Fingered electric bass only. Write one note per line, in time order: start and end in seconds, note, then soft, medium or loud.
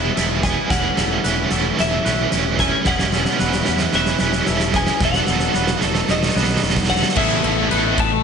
0.17 0.55 E1 medium
0.70 0.90 E1 medium
0.98 1.17 E1 medium
1.26 1.44 E1 medium
1.52 1.71 E1 medium
1.80 1.98 E1 medium
2.07 2.25 B1 medium
2.33 2.71 E1 medium
2.86 3.25 E1 medium
3.41 3.60 E1 medium
3.68 3.87 E2 medium
3.94 4.13 E1 medium
4.21 4.40 E1 medium
4.48 4.87 E1 medium
5.01 5.20 E1 medium
5.29 5.48 E1 medium
5.55 5.75 E1 medium
5.83 6.02 E1 medium
6.09 6.29 E1 medium
6.36 6.56 B1 medium
6.63 7.02 E1 medium
7.17 7.41 A1 medium
7.44 7.68 A1 loud
7.72 8.19 A1 loud